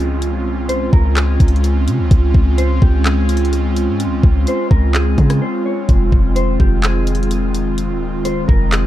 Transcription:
0.00 0.35 C#2 loud
0.00 8.87 G#3 medium
0.00 8.87 C4 medium
0.00 5.85 C#4 medium
0.00 8.87 F4 medium
0.00 downlifter medium
0.22 closed hi-hat medium
0.34 0.90 C2 loud
0.69 0.91 C5 medium
0.69 closed hi-hat medium
0.93 1.38 C#2 loud
0.93 1.15 A#4 medium
0.93 kick medium
1.16 1.61 G#4 medium
1.16 clap loud
1.16 closed hi-hat medium
1.40 1.89 C#2 loud
1.40 kick loud
1.40 closed hi-hat medium
1.48 closed hi-hat medium
1.56 closed hi-hat soft
1.64 closed hi-hat medium
1.87 2.00 C#3 loud
1.87 closed hi-hat medium
1.99 2.10 C#2 loud
2.11 2.34 C#2 loud
2.11 kick loud
2.11 closed hi-hat medium
2.34 2.80 C#2 loud
2.34 kick loud
2.58 2.81 C5 medium
2.58 closed hi-hat medium
2.82 3.90 C#2 loud
2.82 3.05 G4 medium
2.82 kick medium
3.05 3.50 G#4 medium
3.05 clap loud
3.05 closed hi-hat medium
3.29 closed hi-hat medium
3.37 closed hi-hat medium
3.45 closed hi-hat soft
3.53 closed hi-hat medium
3.76 closed hi-hat medium
3.88 4.07 G#2 medium
4.00 closed hi-hat medium
4.06 4.23 C#2 loud
4.23 4.46 C#2 loud
4.23 kick loud
4.47 4.70 C5 medium
4.47 closed hi-hat medium
4.71 5.16 C#2 loud
4.71 4.93 A#4 medium
4.71 kick medium
4.94 5.39 G#4 medium
4.94 clap loud
4.94 closed hi-hat medium
5.18 5.41 C#3 loud
5.18 kick loud
5.18 closed hi-hat soft
5.30 cross-stick medium
5.30 closed hi-hat medium
5.42 5.64 C5 medium
5.66 5.88 C#5 medium
5.89 6.12 F1 loud
5.89 8.87 D#3 medium
5.89 kick loud
5.89 closed hi-hat medium
6.12 6.58 F1 loud
6.12 kick medium
6.36 6.58 C5 medium
6.36 closed hi-hat medium
6.60 7.91 F1 loud
6.60 6.82 G4 medium
6.60 kick loud
6.83 7.28 G#4 medium
6.83 clap loud
6.83 closed hi-hat medium
7.07 closed hi-hat medium
7.15 closed hi-hat medium
7.23 closed hi-hat soft
7.31 closed hi-hat medium
7.55 closed hi-hat medium
7.78 closed hi-hat medium
7.90 8.46 D#1 loud
8.25 8.48 C5 medium
8.25 closed hi-hat medium
8.48 8.87 F1 loud
8.48 8.71 A#4 medium
8.48 kick loud
8.72 8.87 G#4 medium
8.72 clap loud
8.72 closed hi-hat medium

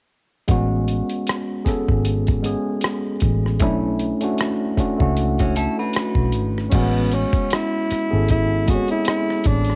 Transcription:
0.48 1.00 A1 medium
0.48 1.60 G#3 medium
0.48 1.60 B3 medium
0.48 1.61 C#4 medium
0.48 1.61 F#4 medium
0.48 kick medium
0.48 closed hi-hat medium
0.88 closed hi-hat soft
1.09 closed hi-hat soft
1.27 cross-stick medium
1.27 closed hi-hat medium
1.65 2.40 B3 medium
1.65 2.40 C#4 medium
1.65 2.40 G#4 medium
1.65 2.41 A4 medium
1.65 muted fingered electric bass stroke soft
1.65 kick medium
1.65 cross-stick soft
1.65 closed hi-hat medium
1.88 2.54 G#1 medium
1.88 kick medium
2.05 closed hi-hat medium
2.27 kick medium
2.27 closed hi-hat soft
2.42 3.55 G#3 medium
2.42 3.55 B3 medium
2.42 3.56 C#4 medium
2.42 3.56 G#4 medium
2.42 closed hi-hat medium
2.81 cross-stick medium
2.81 closed hi-hat medium
3.20 3.62 A1 medium
3.20 kick medium
3.20 closed hi-hat medium
3.46 cross-stick soft
3.60 4.12 B1 medium
3.60 4.18 A3 medium
3.60 4.18 C#4 medium
3.60 4.19 D4 medium
3.60 4.19 E4 medium
3.60 kick medium
3.60 closed hi-hat medium
3.99 closed hi-hat soft
4.20 4.74 A3 medium
4.20 4.75 C#4 medium
4.20 4.75 D4 medium
4.20 4.76 F#4 medium
4.20 closed hi-hat soft
4.38 cross-stick medium
4.38 closed hi-hat medium
4.77 4.97 A3 medium
4.77 4.98 C#4 medium
4.77 4.99 D4 medium
4.77 4.99 F#4 medium
4.77 muted fingered electric bass stroke soft
4.77 kick medium
4.77 closed hi-hat soft
4.98 5.66 C#2 medium
4.98 6.46 A3 medium
4.98 6.46 C#4 medium
4.98 6.47 D4 medium
4.98 6.47 F#4 medium
4.98 kick medium
5.17 closed hi-hat medium
5.39 5.56 C#4 medium
5.39 5.55 F#4 medium
5.39 kick medium
5.39 closed hi-hat soft
5.56 5.77 E4 medium
5.56 5.77 A4 medium
5.56 closed hi-hat medium
5.79 6.69 F#4 medium
5.79 6.69 B4 medium
5.93 cross-stick medium
5.93 closed hi-hat medium
6.15 6.36 B1 medium
6.15 kick medium
6.32 6.67 G#1 medium
6.32 closed hi-hat medium
6.58 cross-stick soft
6.69 8.03 G#3 medium
6.69 8.03 B3 medium
6.69 6.78 C#4 medium
6.69 kick loud
6.69 closed hi-hat medium
6.69 crash medium
6.74 7.24 A1 medium
6.74 7.16 B3 medium
6.74 8.04 C#4 medium
6.74 8.04 F#4 medium
7.12 7.55 C#4 medium
7.12 closed hi-hat medium
7.33 kick medium
7.33 closed hi-hat soft
7.50 8.30 E4 medium
7.50 cross-stick medium
7.50 closed hi-hat medium
7.90 muted fingered electric bass stroke soft
7.90 cross-stick soft
7.90 closed hi-hat medium
8.11 8.77 G#1 medium
8.11 8.65 B3 medium
8.11 8.65 C#4 medium
8.11 8.64 G#4 medium
8.11 8.66 A4 medium
8.29 8.71 E4 medium
8.29 kick medium
8.29 closed hi-hat medium
8.66 9.75 G#3 medium
8.66 9.75 B3 medium
8.66 8.75 C4 soft
8.66 8.90 F#4 medium
8.66 9.75 G#4 medium
8.66 kick medium
8.66 closed hi-hat medium
8.75 9.75 C#5 medium
8.88 9.06 E4 medium
8.88 closed hi-hat soft
9.05 cross-stick medium
9.05 closed hi-hat medium
9.09 9.49 E4 medium
9.30 cross-stick soft
9.44 9.75 A1 medium
9.44 9.75 D4 medium
9.44 kick medium
9.44 closed hi-hat medium
9.65 closed hi-hat soft
9.70 cross-stick soft

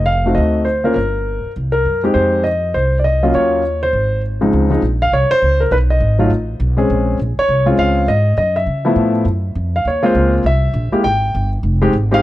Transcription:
0.00 0.34 F1 medium
0.06 0.37 F5 medium
0.26 0.65 A3 medium
0.26 0.65 C4 soft
0.26 0.65 D#4 soft
0.26 0.65 F#4 medium
0.35 0.94 D2 medium
0.35 0.67 D#5 medium
0.65 0.97 C5 medium
0.84 0.95 A#3 medium
0.84 0.95 C#4 medium
0.84 0.95 F4 medium
0.84 0.93 A#4 medium
0.94 1.41 G1 medium
0.94 1.51 A#4 medium
1.44 muted upright bass stroke soft
1.56 1.84 C2 medium
1.72 2.01 A#4 medium
1.85 2.13 F#2 medium
2.03 2.43 G#3 medium
2.03 2.43 C4 medium
2.03 2.43 D#4 medium
2.03 2.43 G4 medium
2.14 2.71 F2 medium
2.14 2.45 C5 medium
2.44 2.75 D#5 medium
2.74 3.31 C2 medium
2.74 2.97 C5 medium
2.99 3.05 D5 medium
3.04 3.32 D#5 medium
3.23 3.62 F#3 medium
3.23 3.62 A#3 medium
3.23 3.62 C#4 medium
3.23 3.62 F4 medium
3.34 3.90 D#2 medium
3.34 3.83 C#5 medium
3.83 4.21 C5 medium
3.93 4.50 G#1 medium
4.41 4.80 C#2 medium
4.41 4.68 F3 medium
4.41 4.69 G#3 medium
4.41 4.69 C4 medium
4.41 4.70 D#4 medium
4.53 4.82 C#2 medium
4.70 4.81 F3 medium
4.70 4.81 G#3 medium
4.70 4.81 C4 medium
4.70 4.82 D#4 medium
4.82 5.11 A#1 medium
5.02 5.12 F5 medium
5.12 5.29 C2 medium
5.12 5.31 C#5 medium
5.30 5.61 C5 loud
5.30 muted upright bass stroke soft
5.42 5.71 C#2 medium
5.61 5.72 A#4 medium
5.71 6.00 B1 medium
5.71 5.77 B4 medium
5.90 6.75 D#5 medium
6.00 6.29 G#1 medium
6.19 6.29 F#3 medium
6.19 6.29 A3 medium
6.19 6.30 D#4 medium
6.19 6.30 F4 medium
6.30 6.59 A1 medium
6.60 6.89 B1 medium
6.77 7.16 G#3 medium
6.77 7.17 C4 medium
6.77 7.17 C#4 medium
6.77 7.17 G#4 medium
6.90 7.18 A#1 medium
7.19 7.36 A#1 medium
7.38 7.66 C#5 loud
7.38 muted upright bass stroke soft
7.49 7.77 C2 medium
7.66 8.05 G#3 medium
7.66 8.06 C4 medium
7.66 8.05 C#4 medium
7.66 8.06 F4 medium
7.77 8.07 C#2 medium
7.77 8.09 F5 loud
8.08 8.36 G#2 medium
8.08 8.36 D#5 medium
8.37 8.66 F#2 medium
8.37 8.56 D#5 medium
8.56 9.11 E5 medium
8.66 8.95 C#3 medium
8.85 9.24 F3 medium
8.85 9.24 A3 medium
8.85 9.24 B3 medium
8.85 9.24 E4 medium
8.96 9.24 A2 medium
9.25 9.54 F#2 medium
9.55 9.84 F2 medium
9.76 9.87 F5 medium
9.85 10.14 D#2 medium
9.85 10.03 C#5 medium
10.03 10.42 G#3 medium
10.03 10.42 A#3 medium
10.03 10.42 C4 medium
10.03 10.42 F4 medium
10.03 10.32 C5 medium
10.14 10.43 C#2 medium
10.44 10.73 C2 medium
10.44 10.90 E5 medium
10.74 10.91 A#1 medium
10.92 11.03 G#3 medium
10.92 11.03 A#3 medium
10.92 11.03 E4 medium
10.92 11.03 G4 medium
10.92 muted upright bass stroke soft
11.04 11.33 G#1 medium
11.04 11.48 G5 loud
11.35 11.62 G1 medium
11.63 11.92 F1 medium
11.82 11.92 G#3 medium
11.82 11.92 C4 medium
11.82 11.92 D#4 medium
11.82 11.92 G4 medium
11.93 12.22 G#1 medium
12.11 12.22 G#3 medium
12.11 12.22 C4 medium
12.11 12.22 D#4 medium
12.11 12.22 G4 medium
12.11 12.22 F5 loud

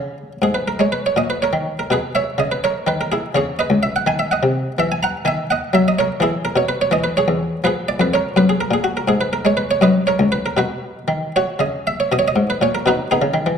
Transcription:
0.00 0.32 C#3 medium
0.00 0.38 D#4 soft
0.00 0.17 B4 medium
0.42 0.72 G#2 medium
0.42 0.55 G#4 loud
0.54 0.67 B4 medium
0.68 0.80 A#4 medium
0.79 1.09 G#3 medium
0.79 0.92 C#5 medium
0.92 1.04 B4 medium
1.06 1.18 C#5 medium
1.16 1.46 A#2 medium
1.16 1.30 D#5 loud
1.30 1.42 B4 medium
1.42 1.77 A#4 medium
1.42 1.79 C#5 medium
1.53 1.82 D#3 medium
1.79 1.91 A#4 medium
1.90 2.29 B2 medium
1.90 2.14 G#4 medium
1.90 2.12 B4 medium
2.15 2.38 C#5 medium
2.15 2.39 E5 medium
2.38 2.77 C#3 medium
2.38 2.51 D#5 medium
2.52 2.63 B4 medium
2.64 2.86 A#4 medium
2.64 2.88 C#5 loud
2.87 3.25 D#3 medium
2.87 3.00 B4 medium
3.01 3.12 A#4 medium
3.12 3.34 E4 medium
3.12 3.32 G#4 medium
3.35 3.63 C#3 medium
3.35 3.58 G#4 medium
3.35 3.56 C#5 loud
3.59 3.82 B4 medium
3.59 3.79 D#5 medium
3.70 3.99 C#2 medium
3.83 3.95 E5 loud
3.96 4.07 F#5 loud
4.06 4.35 D#3 medium
4.06 4.19 G#5 loud
4.19 4.31 E5 medium
4.31 4.76 D#5 medium
4.31 4.72 F#5 loud
4.43 4.71 C3 medium
4.78 5.17 E3 medium
4.78 4.91 E5 loud
4.92 5.03 G#5 medium
5.03 5.25 F#5 medium
5.03 5.26 A#5 loud
5.25 5.64 D#3 medium
5.25 5.49 E5 medium
5.25 5.46 G#5 medium
5.50 5.73 D#5 medium
5.50 5.74 F#5 loud
5.73 6.11 F#3 medium
5.73 5.86 E5 loud
5.88 5.99 D#5 loud
5.99 6.21 A#4 medium
5.99 6.22 C#5 loud
6.20 6.49 E3 medium
6.20 6.44 E4 medium
6.20 6.45 G#4 loud
6.45 6.56 A#4 loud
6.56 6.84 B2 medium
6.56 6.68 C#5 loud
6.69 6.80 B4 loud
6.81 6.92 C#5 loud
6.91 7.20 E3 medium
6.91 7.04 D#5 loud
7.04 7.16 B4 medium
7.17 7.61 G#4 medium
7.17 7.64 C#5 loud
7.28 7.56 E2 medium
7.64 7.92 F3 medium
7.64 7.87 G#4 medium
7.64 7.88 B4 loud
7.88 8.00 D5 loud
8.00 8.28 F2 medium
8.00 8.12 B4 medium
8.14 8.36 A#4 medium
8.14 8.33 C#5 loud
8.36 8.65 F#2 medium
8.36 8.48 B4 loud
8.49 8.60 G#4 medium
8.61 8.72 A#4 loud
8.71 8.99 A#2 medium
8.71 8.84 G#4 medium
8.84 8.95 F#4 loud
8.97 9.08 A#4 medium
9.08 9.36 G#2 medium
9.08 9.20 G#4 loud
9.21 9.32 B4 medium
9.33 9.44 A#4 loud
9.45 9.74 G#3 medium
9.45 9.57 C#5 loud
9.57 9.69 B4 loud
9.71 9.82 C#5 loud
9.81 10.11 F#2 medium
9.81 10.05 B4 medium
9.81 10.06 D#5 loud
10.07 10.31 A#4 medium
10.07 10.28 C#5 loud
10.19 10.50 C#2 medium
10.32 10.44 B4 loud
10.46 10.58 A#4 medium
10.57 10.98 B2 medium
10.57 11.32 F#4 medium
10.57 11.87 B4 loud
11.08 11.50 D#3 medium
11.36 11.60 F#4 medium
11.36 11.61 C#5 loud
11.59 12.01 C#3 medium
11.59 11.86 D#5 medium
11.87 11.99 E5 loud
12.00 12.12 C#5 medium
12.12 12.30 B2 medium
12.12 12.19 D#5 loud
12.19 12.26 C#5 loud
12.28 12.46 D#5 loud
12.36 12.54 G#2 medium
12.50 12.62 B4 medium
12.61 12.79 A#2 medium
12.61 12.74 C#5 loud
12.75 12.86 A#4 medium
12.86 13.12 B2 medium
12.86 13.09 D#4 medium
12.86 13.09 F#4 medium
12.86 13.07 B4 loud
13.11 13.56 B3 medium
13.11 13.56 D#4 medium
13.11 13.58 G#4 loud
13.22 13.33 C#3 medium
13.34 13.45 D#3 medium
13.46 13.58 E3 medium

